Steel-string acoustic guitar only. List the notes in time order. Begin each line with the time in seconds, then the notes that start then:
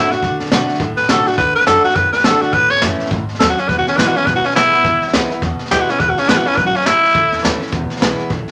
Already playing: A2 D3 A3 D4
0.11 D4 F#4
0.24 D3
0.52 D3 A3 D4 F#4
0.81 A2
1.08 D3 A3 D4 F#4
1.26 D4 F#4
1.38 D3
1.67 D3 A3 D4 F#4
1.84 D4 F#4
1.95 A2
2.24 D3 A3 D4 F#4
2.53 A2
2.82 E3 A3 C#4 E4
3.11 G#2
3.40 F#2
3.70 E2
3.97 E3 G#3 B3 E4
4.14 B3 E4
4.27 B2
4.55 E3 G#3 B3 E4
4.73 B3 E4
4.86 E2
5.13 E3 G#3 B3 E4
5.30 B3 E4
5.42 B2
5.71 E3 G#3 B3 E4
5.89 B3 E4
6.00 E2
6.28 E3 G#3 B3 E4
6.45 B3 E4
6.58 F#2
6.86 G#2
7.15 A2
7.42 E3 A3 C#4 E4
7.60 C#4 E4
7.72 E2
8.00 E3 G#3 B3 E4
8.30 A2